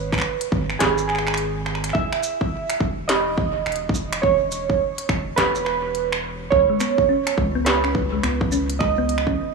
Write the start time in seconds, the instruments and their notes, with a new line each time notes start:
Already playing: analog synth bass G#1, synth keys B4
0.12 finger snap, kick
0.14 finger snap
0.18 finger snap
0.20 finger snap
0.21 finger snap
0.41 closed hi-hat
0.52 analog synth bass G#1, kick
0.70 finger snap
0.79 analog synth bass G#1, synth keys G#4, kick, snare, closed hi-hat
0.98 shaker
1.08 synth keys G#4, finger snap
1.15 finger snap
1.19 finger snap
1.27 finger snap
1.34 finger snap, closed hi-hat
1.66 finger snap
1.75 finger snap
1.84 finger snap, closed hi-hat
1.89 synth keys E5, finger snap
1.95 analog synth bass E1, kick
2.13 finger snap
2.23 closed hi-hat, shaker
2.41 kick
2.70 finger snap, closed hi-hat
2.80 analog synth bass E1, kick
3.08 synth keys D#5, finger snap, snare, closed hi-hat
3.38 kick
3.66 analog synth bass E1, finger snap, closed hi-hat
3.72 closed hi-hat
3.76 closed hi-hat
3.89 kick
3.95 shaker
4.13 finger snap, closed hi-hat
4.22 synth keys C#5, kick
4.52 closed hi-hat, shaker
4.70 kick
4.98 closed hi-hat
5.09 analog synth bass E1, finger snap, kick
5.36 analog synth bass E1, synth keys B4, kick, snare, closed hi-hat
5.55 shaker
5.65 synth keys B4, finger snap
5.95 closed hi-hat
6.12 finger snap
6.50 analog synth bass C#2, synth keys C#5, kick
6.70 synth arpeggio sound G#3
6.80 synth arpeggio sound B3, finger snap, closed hi-hat, shaker
6.98 kick
7.09 synth arpeggio sound C#4
7.27 finger snap, closed hi-hat
7.38 analog synth bass C#2, synth arpeggio sound G#3, kick
7.55 synth arpeggio sound B3
7.65 synth keys B4, snare, closed hi-hat
7.84 synth arpeggio sound C#4, finger snap
7.95 kick
8.12 synth arpeggio sound G#3
8.23 analog synth bass C#2, synth arpeggio sound B3, finger snap, closed hi-hat
8.41 kick
8.52 synth arpeggio sound C#4, shaker
8.70 closed hi-hat
8.79 synth arpeggio sound G#3, synth keys D#5, finger snap, kick
8.98 synth arpeggio sound B3
9.09 closed hi-hat
9.18 finger snap
9.27 synth arpeggio sound C#4, kick